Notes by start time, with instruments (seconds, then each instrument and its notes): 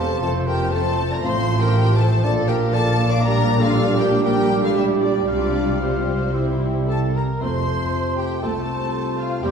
Already playing: double bass section E1, cello section E2, viola section G3 C4, bassoon A#3, clarinet G4, violin section A4 A5, flute C5, cor anglais C5
0.20 double bass section F1, cello section F2, french horn section F3 C4, viola section F3, bassoon A3, clarinet F4, violin section A4 A5, flute C5
0.47 violin section G4 G5, flute A#4
0.71 violin section A4 A5, flute C5
1.10 violin section A#4 A#5, flute D5
1.22 double bass section A1, cello section A2, french horn section F3 C4, violin section C5 C6, cor anglais C5, flute F5
1.60 violin section G4 G5, flute A#4
1.98 violin section A4 A5, flute C5
2.23 double bass section A#1, cello section A#2, french horn section F3 D4, bassoon A#3, viola section D4, violin section A4 A5, cor anglais D5, flute D5
2.48 violin section G4 G5, flute A#4
2.73 violin section A4 A5, flute D5
3.10 violin section D5 D6, flute F5
3.22 bassoon G3, viola section G3, french horn section G3 D4, clarinet G4, violin section A#4 A#5, flute D5
3.59 violin section F4, flute A4
3.63 violin section F5
3.98 violin section G4 G5, flute A#4
4.23 french horn section G3 D4, violin section G4 G5, flute A#4
4.62 violin section F4 F5, flute A4
4.75 violin section E4 E5, flute G4
5.01 violin section D4 D5, flute F4
5.27 double bass section C2, cello section C3, french horn section G3 F4, violin section D4 D5, viola section F4, flute F4, cor anglais F5
5.80 french horn section G3 F4, violin section C4 C5, flute F4
6.34 french horn section G3 E4, viola section E4, cor anglais E5
6.88 violin section A4 A5, trumpet A4, flute A5
7.14 violin section A#4 A#5, trumpet A#4, flute A#5
7.40 double bass section F1, cello section F2, trombone section C3 A3, bassoon A3, viola section A3 C4, french horn section C4 C5, clarinet F4, violin section C5 C6, cor anglais C5, trumpet C5, flute C6
8.17 violin section G4 G5, trumpet G4, flute G5
8.42 double bass section C2, cello section C2, trombone section C3 A3, bassoon A3, viola section A3 C4, french horn section C4 C5, clarinet F4, violin section A4 A5, trumpet A4, cor anglais C5, flute A5
9.18 violin section F4 F5, trumpet F4, flute F5
9.42 double bass section E1, cello section E2, trombone section C3 G3, bassoon G3, viola section G3 C4, french horn section C4 C5, violin section G4 G5, trumpet G4, clarinet G4, cor anglais C5, flute G5